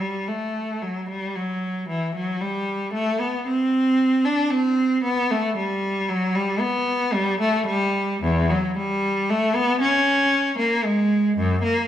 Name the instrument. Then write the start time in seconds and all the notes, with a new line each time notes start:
cello
0.01 G3
0.28 A3
0.82 F#3
1.09 G3
1.36 F#3
1.89 E3
2.15 F#3
2.41 G3
2.93 A3
3.20 B3
3.47 C4
4.25 D4
4.51 C4
5.03 B3
5.31 A3
5.57 G3
6.08 F#3
6.35 G3
6.60 B3
7.13 G3
7.40 A3
7.66 G3
8.23 E2
8.50 F#3
8.77 G3
9.29 A3
9.55 B3
9.81 C#4
10.58 A#3
10.85 G#3
11.37 F#2
11.63 A#3